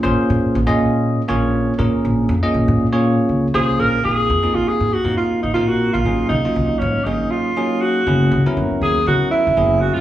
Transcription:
X:1
M:4/4
L:1/16
Q:"Swing 16ths" 1/4=120
K:Bbm
V:1 name="Alto saxophone"
z16 | z12 A2 B2 | A4 F A2 G2 F2 E F G2 F- | F2 E4 D2 E2 F4 G2- |
G4 z2 A2 G2 _F4 G =F |]
V:2 name="Tine electric piano"
[B,DFAc]4 z [B,DFAe]4 z [B,DFAd]3 z [B,DFAB]2- | [B,DFAB]2 z [B,DFAe]3 z [B,DFAd]4 z [B,DFAc]3 z | [B,CEFA]3 [B,CEFA]4 z [B,CEFB]3 z [B,CEFB]3 z | [G,B,DEA]3 [G,B,DEF]4 z [G,B,DEA]3 z [G,B,DEA]3 z |
[G,_CD_FA]3 [G,CDFB]4 z [G,CDFB]3 z [G,CDFA]3 z |]
V:3 name="Upright bass" clef=bass
B,,, z B,,2 B,,, B,,4- B,, B,,,4 B,, z | B,,,2 F,, z B,,, B,,4- B,, D,,2 C,,2 B,,,2 | B,,,2 F,, z B,,, z A,,2 F,, z2 A,,, B,,,3 B,,, | A,,, z C,, z C,, z A,, z A,,,2 z6 |
G,,,2 D,, z G,,, z E,,2 D,, z2 _F,,, G,,,3 D,, |]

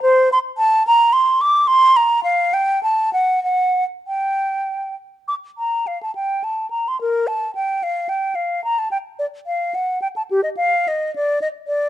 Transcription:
X:1
M:3/4
L:1/16
Q:1/4=108
K:Gm
V:1 name="Flute"
c2 c'2 a2 b2 c'2 d'2 | c'2 b2 f2 g2 a2 ^f2 | ^f3 z g6 z2 | [K:Bb] d'2 b2 f a g2 a2 b c' |
B2 a2 g2 f2 g2 f2 | b a g2 d2 f2 _g2 =g a | G e f2 e2 d2 e2 d2 |]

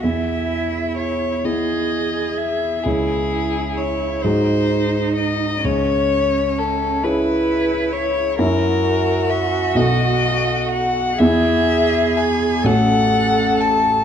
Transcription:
X:1
M:6/8
L:1/8
Q:3/8=43
K:E
V:1 name="Violin"
e2 c d2 e | G2 c ^B2 d | c2 A B2 c | ^A2 e d2 f |
e2 g f2 a |]
V:2 name="Cello"
E3 G3 | E3 D3 | C3 E3 | F6 |
G3 A3 |]
V:3 name="Grand piano"
E,,3 [B,EG]3 | [C,,CEG]3 [G,,DFG]3 | C,,3 [CEG]3 | [F,,CEF]3 [B,,,B,FA]3 |
[E,,B,EG]3 [A,,,A,CF]3 |]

